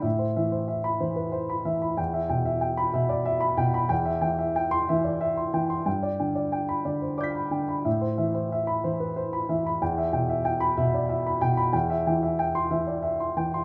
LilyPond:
<<
  \new Staff \with { instrumentName = "Grand piano" } { \time 3/4 \key a \dorian \tempo 4 = 93 << { r4 r16 b''8 r4 r16 | r4 r16 b''8 r4 r16 | r4 r16 c'''8 r4 r16 | r4 r16 b''8 r16 <d''' g''' b'''>4 |
r4 r16 b''8 r4 r16 | r4 r16 b''8 r4 r16 | r4 r16 c'''8 r4 r16 | } \\ { e''16 c''16 e''16 c''16 e''8 c''16 b'16 c''16 b''16 e''16 b''16 | g''16 e''16 g''16 e''16 g''8 e''16 d''16 e''16 b''16 g''16 b''16 | g''16 e''16 g''16 e''16 g''8 e''16 d''16 e''16 c'''16 g''16 c'''16 | g''16 d''16 g''16 d''16 g''8 d''16 c''16 d''16 b''16 g''16 b''16 |
e''16 c''16 e''16 c''16 e''8 c''16 b'16 c''16 b''16 e''16 b''16 | g''16 e''16 g''16 e''16 g''8 e''16 d''16 e''16 b''16 g''16 b''16 | g''16 e''16 g''16 e''16 g''8 e''16 d''16 e''16 c'''16 g''16 c'''16 | } >> }
  \new Staff \with { instrumentName = "Grand piano" } { \clef bass \time 3/4 \key a \dorian a,8 e4 e4 e8 | e,8 b,4 b,4 b,8 | e,8 e4 e4 e8 | g,8 d4 d4 d8 |
a,8 e4 e4 e8 | e,8 b,4 b,4 b,8 | e,8 e4 e4 e8 | }
>>